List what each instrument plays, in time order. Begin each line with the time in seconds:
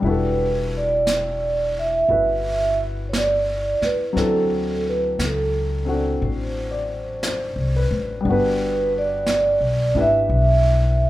0.00 upright bass E1, grand piano G3 D4, brush sweep
0.04 grand piano E4 F#4, vibraphone B4
0.10 grand piano A4
0.77 vibraphone D5
1.07 brush sweep, snare, hi-hat pedal
1.79 vibraphone E5
2.09 upright bass G1, grand piano E4 F#4 B4, brush sweep
3.09 vibraphone C#5
3.13 vibraphone D5, brush sweep, snare, hi-hat pedal
3.82 vibraphone B4, muted upright bass stroke, snare
4.13 upright bass D2, grand piano F#3 C4 D4 E4, brush sweep, snare
4.17 grand piano A4, vibraphone A4
4.89 vibraphone B4
5.19 upright bass C#2, brush sweep, snare, hi-hat pedal
5.25 vibraphone A4
5.85 grand piano C4 D4 F#4
6.22 upright bass A1, vibraphone C5, brush sweep
6.71 grand piano D5
7.23 grand piano C5, brush sweep, snare, hi-hat pedal
7.56 upright bass C2
7.76 grand piano B4
7.91 upright bass A1
8.21 grand piano G3 B3
8.25 upright bass G1, grand piano D4, brush sweep
8.29 grand piano F#4 B4, vibraphone B4
8.98 vibraphone D5
9.27 brush sweep, snare, hi-hat pedal
9.61 upright bass B1
9.95 upright bass G#1, grand piano D4 E4 G4 B4
10.01 vibraphone E5
10.29 upright bass B1, brush sweep